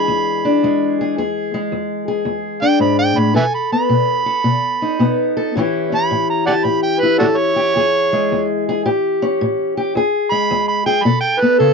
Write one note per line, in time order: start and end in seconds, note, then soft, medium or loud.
0.00 3.37 E3 medium
0.00 0.62 G#3 medium
0.00 0.44 D4 medium
0.00 0.99 G#4 medium
0.00 0.96 B5 loud
0.08 0.59 E2 medium
0.45 1.16 D4 medium
0.63 1.14 E2 medium
0.63 1.53 G#3 medium
1.01 1.16 G#4 medium
1.18 1.69 E2 medium
1.18 2.07 G#4 medium
1.54 3.37 G#3 medium
1.72 2.23 E2 medium
2.08 3.34 G#4 medium
2.25 2.77 E2 medium
2.62 3.34 D4 medium
2.62 2.81 G5 loud
2.80 3.16 G#2 medium
2.80 2.98 B5 medium
2.99 3.20 G5 loud
3.17 3.36 A2 medium
3.17 3.36 B5 medium
3.34 3.87 B2 medium
3.34 4.26 A4 medium
3.34 3.45 B4 medium
3.34 3.43 E5 medium
3.34 3.54 G#5 loud
3.55 3.73 B5 medium
3.72 4.99 B3 medium
3.72 5.34 B5 loud
3.89 4.42 B2 medium
4.26 5.36 A4 medium
4.44 4.96 B2 medium
4.82 5.54 D#4 medium
4.99 5.52 B2 medium
4.99 5.53 B3 medium
5.37 5.54 A4 medium
5.55 6.07 A2 medium
5.55 9.96 E3 medium
5.55 5.91 C#4 medium
5.55 7.03 E4 medium
5.55 6.47 G4 medium
5.92 7.19 C#4 medium
5.92 6.29 B5 loud
6.11 6.62 A2 medium
6.30 6.46 A#5 medium
6.46 7.55 G4 medium
6.46 6.52 D5 medium
6.46 6.54 F#5 medium
6.46 6.66 A5 loud
6.64 7.16 A2 medium
6.64 6.82 B5 loud
6.83 7.02 G5 medium
7.00 10.53 E4 medium
7.00 7.18 B4 loud
7.19 7.72 A2 medium
7.19 7.73 C#4 medium
7.19 7.27 D4 medium
7.19 7.25 F#4 medium
7.19 7.39 A4 loud
7.38 8.45 C#5 loud
7.56 7.73 G4 medium
7.76 8.27 E2 medium
7.76 8.67 G#4 medium
8.13 8.86 G#3 medium
8.32 8.82 E2 medium
8.69 8.84 G#4 medium
8.85 9.37 A2 medium
8.85 9.76 G4 medium
9.22 9.93 C#4 medium
9.41 9.92 A2 medium
9.77 9.94 G4 medium
9.95 10.46 E2 medium
9.95 10.85 G#4 medium
10.31 11.05 G#3 medium
10.31 10.67 B5 loud
10.51 11.02 E2 medium
10.68 10.86 B5 loud
10.86 11.03 G#4 medium
10.86 11.05 G5 loud
11.03 11.56 B2 medium
11.03 11.73 A4 medium
11.03 11.20 B5 loud
11.21 11.41 G5 loud
11.40 11.73 B3 medium
11.40 11.60 B4 medium
11.59 11.73 C#3 medium
11.59 11.73 A4 medium